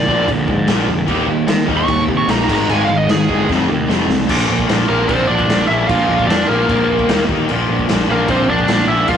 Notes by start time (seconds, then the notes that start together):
Already playing: D5
0.07 A#1 A#2 D3 F3 A#3, kick
0.27 A#1 A#2 D3 F3, kick, crash
0.47 G#2 A#2 D3 F3, kick
0.67 A#1 A#2 D3 F3 A#3, snare, crash
0.88 F1 A#2 D3 F3
1.06 D#2 D#3 G3 A#3 D#4, kick, crash
1.27 D#2 D#3 G3 A#3
1.47 D#3 G3 A#3, snare, crash
1.66 D#2 D#3 G3 A#3 D#4, kick
1.77 C#6
1.87 D#2 D#3 G3 A#3, kick, crash
2.08 C3 D#3 G3 A#3, kick
2.17 C#6
2.27 A#1 D#3 G3 A#3 D#4 A#5, snare, crash
2.44 G#2 D#3 A#5
2.48 G#1 G#3, kick, crash
2.55 A#5
2.68 G#1 G#2 D#3 G#3 G#5, crash
2.85 G#1 G#2 F5
2.89 D#3
2.97 D#5
3.06 G#2 D#3, snare, crash
3.10 G#4
3.28 G1 G#2 D#3 G#3, kick
3.48 F1 F2 C3 F3 A3 C4, kick, snare
3.68 D#2 F2 C3 F3 A3
3.88 F1 F2 C3 F3 A3 C4, snare
4.08 C2 F2 C3 F3 A3, snare
4.27 A#1 A#2 F3 A#3, kick, crash
4.49 A#1
4.59 kick
4.67 A#1 A#2 F3 A#3, snare, crash
4.88 A#1 A#2 F3 A#3 A#4
5.08 A#1 A#2 F3 A#3 C4 C5, kick, crash
5.28 A#1 D4 D5
5.39 kick
5.48 A#1 A#2 F3 A#3, snare, crash
5.67 A#1 A#2 F3 A#3 E4 E5
5.87 A#1 A#2 F3 A#3 F4 F5, kick, crash
6.09 A#1
6.19 kick
6.27 F2 A#2 F3 A#3 D4 D5, snare, crash
6.47 A#1 A#2 F3 A#3 A#4
6.68 A#1 A#2 F3 A#3, kick, crash
6.99 kick
7.08 D#2 D#3 A#3 D#4, snare, crash
7.29 D#2 D#3 A#3 D#4, kick
7.48 A#1 A#2 F3 A#3, crash
7.69 A#1
7.79 kick
7.88 A#1 A#2 F3 A#3, snare, crash
8.08 A#1 A#2 F3 A#3 A#4
8.27 A#1 A#2 F3 A#3 C4 C5, kick, crash
8.49 A#1 D4 D5
8.59 kick
8.68 A#1 A#2 F3 A#3, snare, crash
8.88 A#1 A#2 F3 A#3 E4 E5
9.08 A#1 A#2 F3 A#3 F4 F5, kick, crash